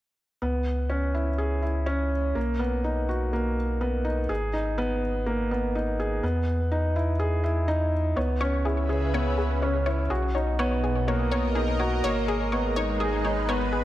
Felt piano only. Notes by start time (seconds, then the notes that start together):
0.42 B3
0.90 C#4
1.14 E4
1.38 G#4
1.62 E4
1.86 C#4
2.35 A#3
2.59 B3
2.84 D#4
3.09 F#4
3.33 A#3
3.81 B3
4.05 D#4
4.29 G#4
4.53 D#4
4.78 B3
5.26 A#3
5.51 B3
5.75 D#4
6.00 G#4
6.23 B3
6.72 D#4
6.96 E4
7.20 G#4
7.44 E4
7.68 D#4
8.16 B3
8.40 C#4
8.65 E4
8.89 G#4
9.14 B3
9.62 C#4
9.87 E4
10.10 F#4
10.35 D#4
10.59 B3
11.08 A#3
11.32 B3
11.55 D#4
11.80 F#4
12.04 A#3
12.53 B3
12.77 D#4
13.01 G#4
13.26 D#4
13.49 B3